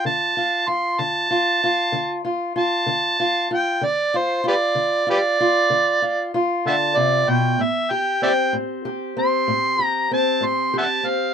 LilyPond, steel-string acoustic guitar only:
\new Staff \with { instrumentName = "Steel-string acoustic guitar" } { \time 12/8 \key d \dorian \tempo 4. = 64 << { r8 f'8 f'4 f'8 f'4 f'8 f'4 f'8 f'8 | r8 f'8 f'4 f'8 f'4 f'8 f'2 | r8 g'8 c'4 g'8 c'4 g'8 c'4 g'8 c'8 | } \\ { d4 r8 d4 r8 d4 r8 d4 r8 | d4 r8 d4 r8 d4 r8 d8 c8 b,8 | a,4 r8 a,4 r8 a,4 r8 a,4 r8 | } >> }